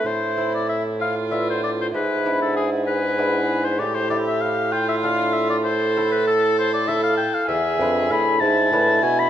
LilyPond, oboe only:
\new Staff \with { instrumentName = "Oboe" } { \time 6/8 \key a \minor \tempo 4. = 65 c''8. d''16 e''8 f''8 e''16 c''16 d''16 c''16 | b'8. a'16 gis'8 b'4~ b'16 c''16 | d''16 c''16 d''16 e''16 f''8 g''16 e''16 f''8 e''16 d''16 | c''8. b'16 a'8 c''16 d''16 e''16 f''16 g''16 f''16 |
e''4 b''8 a''4 gis''16 b''16 | }